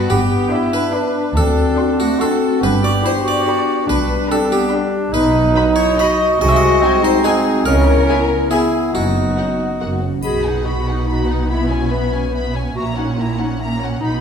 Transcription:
0.09 G1 G2 B3 D4 G4
0.51 D4 E4 B4 B5
0.73 D4 B4
0.94 D4 B4 B5
1.35 D2 C4 D4 F#4 A4
1.78 D4 F#4 C6
1.99 A3 F#4
2.19 C4 D4 F#4 A4 C6
2.62 G1 G2 B3 D4 G4 B4
2.83 F#4 D5
3.03 D4 E4 G4 C5 B5
3.24 F#4 D5
3.28 D5
3.47 D4 G4 B5
3.87 B1 B2 G3 D4 B4
4.29 C4 D4 G4 A4 B5
4.51 B3 G4
4.71 D4 G4 B5
5.12 B1 B2 F#3 D#4 B4
5.55 D#4 F#4 B5
5.76 E4 C#5
5.96 D#4 F#4 D#5 B5
6.39 C2 C3 G#3 F#4 D#5
6.49 E5
6.56 D#5
6.81 C4 D#4 F#4 G#5
7.03 D#4 C5
7.23 C4 D#4 F#4 G#4 G#5
7.66 C#2 C#3 B3 C#4 E4 A#4
8.09 B3 E4 G#5
8.50 B3 E4 G#4 G#5
8.93 F#1 F#2 B3 D#4 F#4
9.38 B3 C#4 D#4 F#5
9.59 B3
9.80 F#1 F#2 A#3 F#4 F#5
10.01 C#4
10.22 B1 B2 F#4 G#4 D#5 B5, triangle
10.44 D#4 B4 F#5
10.64 F#4 D#5 B5
10.86 D#4 B4 F#5
11.07 D#4 F#4 D#5 B5
11.27 D#4 B4 F#5
11.49 B3 E4 E5 B5
11.71 C#4 C#5 G#5
11.91 B3 B4 E5 B5
12.13 C#4 C#5 G#5
12.34 B3 E5 B5
12.55 C#4 C#5 G#5
12.75 A#1 A#2 A#3 F#4 E5 A#5
12.96 C#4 D#4 C#5 F#5
13.18 A#3 E4 E5 A#5
13.38 C#4 D#4 C#5 F#5
13.60 A#3 C#4 E5 A#5
13.81 C#4 C#5 F#5
14.00 B1 B2 D#4 D#5 B5

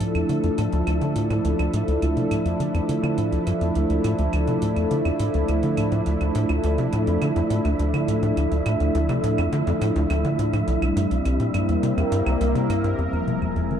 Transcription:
Already playing: F3 A3 D4 E4 A4 E5
0.00 A2, closed hi-hat
0.15 F2, closed hi-hat, claves
0.29 D3, closed hi-hat
0.44 F2, closed hi-hat
0.58 A2, closed hi-hat, claves
0.72 D2, closed hi-hat
0.87 D2, closed hi-hat, claves
1.01 D3, closed hi-hat
1.16 A2, closed hi-hat
1.30 A2, closed hi-hat, claves
1.45 D2, closed hi-hat
1.59 D2, closed hi-hat, claves
1.74 A2, closed hi-hat
1.88 D2, closed hi-hat
2.02 D2, closed hi-hat, claves
2.17 C3, closed hi-hat
2.31 A2, closed hi-hat, claves
2.45 F2, closed hi-hat
2.60 D3, closed hi-hat
2.74 F2, closed hi-hat, claves
2.89 D3, closed hi-hat
3.03 D3, closed hi-hat, claves
3.18 A2, closed hi-hat
3.32 D2, closed hi-hat
3.47 G2, closed hi-hat, claves
3.61 F2, closed hi-hat
3.75 D2, closed hi-hat
3.90 D2, closed hi-hat
4.04 A2, closed hi-hat, claves
4.19 D2, closed hi-hat
4.33 D2, closed hi-hat, claves
4.47 C3, closed hi-hat
4.62 A2, closed hi-hat
4.76 F2, closed hi-hat, claves
4.91 D3, closed hi-hat
5.05 F2, closed hi-hat, claves
5.20 A2, closed hi-hat
5.34 D2, closed hi-hat
5.48 D2, closed hi-hat, claves
5.63 D3, closed hi-hat
5.77 A2, closed hi-hat, claves
5.92 A2, closed hi-hat
6.06 D2, closed hi-hat
6.21 D2, closed hi-hat, claves
6.35 A2, closed hi-hat
6.49 D2, closed hi-hat, claves
6.64 D2, closed hi-hat
6.78 C3, closed hi-hat
6.93 A2, closed hi-hat, claves
7.07 F2, closed hi-hat
7.22 D3, closed hi-hat, claves
7.36 F2, closed hi-hat
7.50 A2, closed hi-hat
7.65 D2, closed hi-hat, claves
7.79 D2, closed hi-hat
7.94 D3, closed hi-hat, claves
8.08 A2, closed hi-hat
8.23 A2, closed hi-hat
8.37 D2, closed hi-hat, claves
8.52 D2, closed hi-hat
8.66 A2, closed hi-hat, claves
8.80 D2, closed hi-hat
8.95 D2, closed hi-hat
9.09 C3, closed hi-hat, claves
9.24 A2, closed hi-hat
9.38 F2, closed hi-hat, claves
9.53 D3, closed hi-hat
9.67 F2, closed hi-hat
9.81 A2, closed hi-hat, claves
9.96 D2, closed hi-hat
10.10 D2, closed hi-hat, claves
10.25 D3, closed hi-hat
10.39 A2, closed hi-hat
10.53 A2, closed hi-hat, claves
10.68 C2 G3, closed hi-hat
10.82 C2, closed hi-hat, claves
10.93 G2 C4, closed hi-hat
11.11 C2, closed hi-hat
11.22 C2 A#3, closed hi-hat, claves
11.40 A#2, closed hi-hat
11.54 G2, closed hi-hat, claves
11.69 E2 A#4, closed hi-hat
11.83 C3, closed hi-hat
11.97 E2, closed hi-hat, claves
12.12 G2, closed hi-hat
12.26 C2, closed hi-hat, claves
12.41 C2, closed hi-hat
12.55 C3, closed hi-hat
12.70 G2, closed hi-hat, claves
12.84 G2, closed hi-hat
12.98 F1 F2 F3 G#3 G#5, closed hi-hat
13.13 F2, closed hi-hat, claves
13.24 C3 G#4, closed hi-hat
13.29 G#3
13.42 F2, closed hi-hat, claves
13.56 F2, closed hi-hat
13.66 C5
13.71 D#3, closed hi-hat

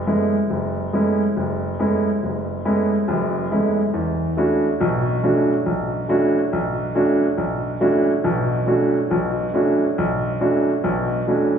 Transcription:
0.07 G#3 A3 B3 C#4 E4
0.50 F#1
0.93 G#3 A3 B3 C#4 E4
1.37 F#1
1.79 G#3 A3 B3 C#4 E4
2.23 F#1
2.65 G#3 A3 B3 C#4 E4
3.08 F#1 F#2
3.51 G#3 A3 B3 C#4 E4
3.94 E2
4.37 A3 C#4 D4 E4 F#4
4.80 B1 B2
5.23 A3 C#4 D4 E4 F#4
5.66 B1
6.09 A3 C#4 D4 E4 F#4
6.53 B1
6.95 A3 C#4 D4 E4 F#4
7.38 B1
7.80 A3 C#4 D4 E4 F#4
8.24 B1 B2
8.67 A3 C#4 D4 E4 F#4
9.11 B1 B2
9.54 A3 C#4 D4 E4 F#4
9.98 B1
10.41 A3 C#4 D4 E4 F#4
10.84 B1 B2
11.27 A3 C#4 D4 E4 F#4

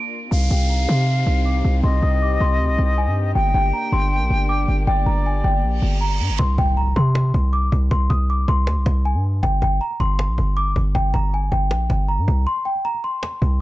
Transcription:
Already playing: A#3 D4 F4 D7
0.31 C2 C3 C4 D#4 G4 F5 C6, downlifter
0.51 C2 G5
0.70 A#5
0.89 C3 C6
1.27 C2
1.45 D6
1.65 C2
1.83 C2 D#5 C6
2.02 C2 D#6
2.22 D6
2.40 C2 C6
2.59 D2
2.69 C2
2.78 C2
2.98 G#5
3.07 G2
3.35 G1 A#3 D4 G5
3.54 G1 G5
3.73 A#5
3.92 G1 C6
4.21 A#1
4.30 G1
4.49 D6
4.68 G1
4.87 G1 D5 G5
5.06 G1 A#5
5.26 G#5
5.44 G1 G5
5.63 A#1, reverse cymbal
5.82 G1
6.01 A#5
6.20 G2
6.30 G1
6.39 C2 C6, cajon bass, impact
6.58 C2 G5, cajon bass
6.68 cajon slap
6.77 A#5, cajon slap
6.87 cajon slap
6.96 C3 C6, cajon bass
7.15 cajon slap
7.34 C2, cajon bass
7.53 D6, cajon slap
7.63 cajon slap
7.72 C2, cajon bass
7.82 cajon slap
7.91 C2 C6, cajon bass
8.00 cajon slap
8.10 C2 D#6, cajon bass
8.20 cajon slap
8.29 D6, cajon slap
8.39 cajon slap
8.48 C2 C6, cajon bass
8.67 D2, cajon slap
8.76 C2, cajon slap
8.86 C2, cajon bass, cajon slap
8.95 cajon slap
9.05 G#5, cajon slap
9.15 G2, cajon slap
9.24 cajon slap
9.34 cajon slap
9.43 G1 G5, cajon bass
9.52 cajon slap
9.62 G1 G5, cajon bass
9.72 cajon slap
9.81 A#5, cajon slap
9.91 cajon slap
10.00 G1 C6, cajon bass
10.19 cajon slap
10.28 A#1, cajon slap
10.38 G1, cajon bass
10.47 cajon slap
10.57 D6, cajon slap
10.67 cajon slap
10.76 G1, cajon bass
10.85 cajon slap
10.95 G1 G5, cajon bass
11.04 cajon slap
11.14 G1 A#5, cajon bass
11.24 cajon slap
11.33 G#5, cajon slap
11.43 cajon slap
11.52 G1 G5, cajon bass
11.71 A#1, cajon slap
11.80 cajon slap
11.90 G1, cajon bass, cajon slap
11.99 cajon slap
12.08 A#5, cajon slap
12.18 G2, cajon slap
12.28 C2, cajon bass
12.33 cajon slap
12.42 cajon slap
12.47 C6, cajon slap
12.56 cajon slap
12.65 G5, cajon slap
12.75 cajon slap
12.85 A#5, cajon slap
12.95 cajon slap
13.04 C6, cajon slap
13.23 cajon slap
13.32 cajon slap
13.42 C2, cajon bass
13.51 cajon slap

